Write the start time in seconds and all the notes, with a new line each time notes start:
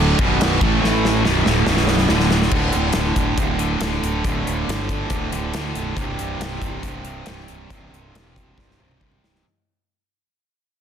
Already playing: D1 D2 A2 D3
0.19 B0 B1 F#2 B2, kick, crash
0.41 snare, crash
0.60 A1 A2 E3 A3, kick, crash
0.81 A1 A2 E3 A3, snare
1.05 snare
1.24 B0 B1 F#2 B2, snare
1.45 D1 D2 A2 D3, snare
1.65 B0 B1 F#2 B2, snare
1.77 snare
1.88 snare
1.98 snare
2.09 D1 D2 A2 D3, snare
2.20 snare
2.31 snare
2.42 snare
2.50 D1 D2 A2 D3, kick, crash
2.73 D1, closed hi-hat
2.93 D1, snare, closed hi-hat
3.16 D1, kick, closed hi-hat
3.37 D1 D2 A2 D3, kick, closed hi-hat
3.59 D2 A2 D3, closed hi-hat
3.81 D1 D2 A2, snare, closed hi-hat
3.85 D3
4.03 D1, closed hi-hat
4.24 D1 D2 A2 D3, kick, closed hi-hat
4.47 D1, closed hi-hat
4.68 G1, snare, closed hi-hat
4.89 kick, closed hi-hat
5.10 D1 D2 A2 D3, kick, closed hi-hat
5.32 D1 D2 A2 D3, closed hi-hat
5.54 D2 A2 D3, snare, closed hi-hat
5.75 B0, closed hi-hat
5.97 C1 C2 G2 C3, kick, closed hi-hat
6.19 C1, closed hi-hat
6.40 C1, snare, closed hi-hat
6.62 C1, kick, closed hi-hat
6.83 C1 C2 G2 C3, kick, closed hi-hat
7.05 C2 G2 C3, closed hi-hat
7.26 C1 C2 G2 C3, snare, closed hi-hat
7.40 snare
7.48 C1, closed hi-hat
7.67 C1 C2 G2 C3, kick, closed hi-hat
7.93 C1, closed hi-hat
8.15 E1, snare, closed hi-hat
8.36 kick, closed hi-hat
8.58 C1 C2 G2 C3, kick, snare
8.71 snare
8.78 C1 C2 G2 C3, mid tom
8.91 mid tom
8.99 C2 G2 C3, kick
9.12 mid tom
9.24 C1, snare
9.35 snare